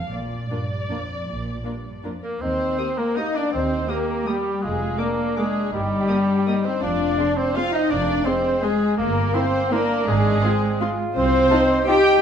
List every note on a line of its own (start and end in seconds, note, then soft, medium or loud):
0.00 0.11 F5 medium
0.12 0.43 A#1 soft
0.12 0.43 A#2 soft
0.12 2.23 D5 medium
0.50 0.86 G2 soft
0.50 0.59 A#3 soft
0.50 0.59 D4 soft
0.50 0.60 F4 soft
0.50 0.59 A#4 soft
0.89 1.26 F2 soft
0.89 0.98 A#3 soft
0.89 0.98 D4 soft
0.89 0.98 F4 soft
0.89 0.98 A#4 soft
1.26 1.58 A#1 soft
1.26 1.64 A#2 soft
1.64 2.03 G2 soft
1.64 1.73 A#3 soft
1.64 1.72 D4 soft
1.64 1.72 F4 soft
1.64 1.72 A#4 soft
2.04 2.23 F2 soft
2.04 2.12 A#3 soft
2.04 2.12 D4 soft
2.04 2.11 F4 soft
2.04 2.12 A#4 soft
2.22 2.40 A#3 soft
2.22 2.42 A#3 soft
2.22 2.41 A#3 soft
2.22 2.29 A#4 soft
2.22 2.43 A#4 soft
2.41 2.72 D#2 soft
2.41 2.99 C4 medium
2.41 2.97 C4 medium
2.41 2.80 D#4 soft
2.41 2.98 C5 medium
2.41 2.97 C5 medium
2.78 2.86 A#3 soft
2.78 3.19 C4 soft
2.78 2.87 G4 soft
2.78 2.87 D#6 soft
2.97 3.17 A#3 soft
2.97 3.18 A#3 soft
2.97 3.16 A#4 soft
2.97 3.17 A#4 medium
3.16 3.25 A#3 soft
3.16 3.54 A#3 soft
3.16 3.37 D#4 medium
3.16 3.35 D#4 soft
3.16 3.36 D#4 medium
3.16 3.25 G4 soft
3.16 3.35 D#5 medium
3.16 3.23 D#5 medium
3.16 3.25 D#6 soft
3.35 3.53 D4 soft
3.35 3.52 D4 medium
3.35 3.53 D4 medium
3.35 3.55 D5 soft
3.35 3.53 D5 medium
3.52 3.83 D#2 medium
3.52 3.91 C4 soft
3.52 3.88 C4 medium
3.52 3.90 C4 medium
3.52 3.90 D#4 soft
3.52 3.89 C5 soft
3.52 3.89 C5 medium
3.88 3.96 A#3 soft
3.88 4.26 A#3 soft
3.88 4.29 A#3 soft
3.88 4.28 A#3 medium
3.88 3.96 G4 soft
3.88 4.65 G4 medium
3.88 4.29 A#4 soft
3.88 4.28 A#4 medium
3.88 3.97 D#6 soft
4.26 4.63 G3 soft
4.26 4.35 A#3 soft
4.26 4.35 G4 soft
4.26 4.64 G4 soft
4.26 4.64 G4 medium
4.26 4.34 D#6 soft
4.62 4.93 F1 medium
4.62 4.98 G#3 medium
4.62 5.00 G#3 soft
4.62 5.00 G#3 medium
4.62 4.99 F4 medium
4.62 4.98 G#4 soft
4.62 4.99 G#4 medium
4.98 5.06 A#3 soft
4.98 5.37 A#3 soft
4.98 5.36 A#3 soft
4.98 5.38 A#3 medium
4.98 5.74 D4 medium
4.98 5.38 A#4 medium
4.98 5.06 A#4 soft
4.98 5.38 A#4 medium
4.98 5.07 D6 soft
5.37 5.71 G#3 medium
5.37 5.73 G#3 soft
5.37 5.74 G#3 medium
5.37 5.45 A#3 soft
5.37 5.73 G#4 soft
5.37 5.74 G#4 medium
5.37 5.45 A#4 soft
5.37 5.45 D6 soft
5.72 6.03 G1 medium
5.72 6.67 G3 medium
5.72 6.64 G3 medium
5.72 6.65 G3 medium
5.72 6.11 D#4 medium
5.72 6.40 G4 medium
5.72 6.65 G4 medium
6.08 6.16 A#3 soft
6.08 6.49 D4 medium
6.08 6.17 A#4 soft
6.08 6.16 D#6 soft
6.47 6.55 A#3 soft
6.47 6.82 D#4 soft
6.47 6.55 A#4 soft
6.47 6.56 D#6 soft
6.64 6.81 C4 medium
6.64 6.82 C4 medium
6.64 6.83 C4 medium
6.64 6.82 C5 medium
6.64 6.81 C5 medium
6.82 7.12 F1 medium
6.82 7.37 D4 medium
6.82 7.36 D4 medium
6.82 7.39 D4 medium
6.82 7.20 F4 medium
6.82 7.38 D5 medium
7.18 7.26 C4 soft
7.18 7.58 D4 medium
7.18 7.26 G#4 soft
7.18 7.27 C6 soft
7.37 7.56 C4 medium
7.37 7.57 C4 medium
7.37 7.56 C4 medium
7.37 7.54 C5 medium
7.37 7.56 C5 medium
7.55 7.64 C4 soft
7.55 7.93 C4 soft
7.55 7.72 F4 medium
7.55 7.74 F4 medium
7.55 7.65 F4 medium
7.55 7.64 G#4 soft
7.55 7.74 F5 medium
7.55 7.64 C6 soft
7.72 7.89 D#4 medium
7.72 7.91 D#4 medium
7.72 7.91 D#5 medium
7.89 8.21 F1 medium
7.89 8.28 A#3 medium
7.89 8.27 D4 medium
7.89 8.26 D4 medium
7.89 8.27 D4 medium
7.89 8.27 D5 medium
8.25 8.75 G#3 medium
8.25 8.64 C4 medium
8.25 8.34 C4 soft
8.25 8.34 G#4 soft
8.25 8.65 C5 medium
8.25 8.64 C5 medium
8.25 8.34 C6 soft
8.63 8.97 G#3 medium
8.63 8.99 G#3 medium
8.63 8.98 G#3 medium
8.63 8.72 C4 soft
8.63 8.99 G#4 medium
8.63 8.72 G#4 medium
8.63 8.72 C6 soft
8.97 9.29 G1 medium
8.97 9.35 A#3 medium
8.97 9.34 A#3 medium
8.97 9.74 A#3 medium
8.97 9.35 A#3 medium
8.97 9.33 A#4 medium
8.97 9.37 A#4 medium
9.34 9.74 C4 medium
9.34 9.72 C4 medium
9.34 9.43 C4 medium
9.34 9.42 E4 medium
9.34 9.73 C5 medium
9.34 9.42 C6 medium
9.71 10.07 A#3 medium
9.71 10.06 A#3 medium
9.71 10.08 A#3 medium
9.71 9.79 C4 medium
9.71 10.45 D4 medium
9.71 9.80 E4 medium
9.71 10.07 A#4 medium
9.71 10.10 A#4 medium
9.71 9.79 C6 medium
10.06 10.37 G#1 medium
10.06 10.98 G#3 medium
10.06 10.96 G#3 medium
10.06 10.97 G#3 medium
10.06 10.98 G#4 medium
10.06 10.84 G#4 medium
10.42 10.51 C4 medium
10.42 10.80 C4 medium
10.42 10.51 F4 medium
10.42 10.50 C6 medium
10.80 10.88 C4 medium
10.80 10.88 F4 medium
10.80 11.53 F4 medium
10.80 10.88 C6 medium
11.15 11.45 C2 medium
11.15 11.84 C4 medium
11.15 11.84 C5 loud
11.15 11.90 C5 medium
11.50 11.59 D#4 medium
11.50 11.86 D#4 medium
11.50 11.59 F4 medium
11.50 11.58 A5 medium
11.87 12.22 D#4 medium
11.87 11.97 D#4 medium
11.87 11.96 F4 medium
11.87 12.22 G4 medium
11.87 12.22 G4 loud
11.87 12.22 G5 loud
11.87 12.21 G5 loud
11.87 11.96 A5 medium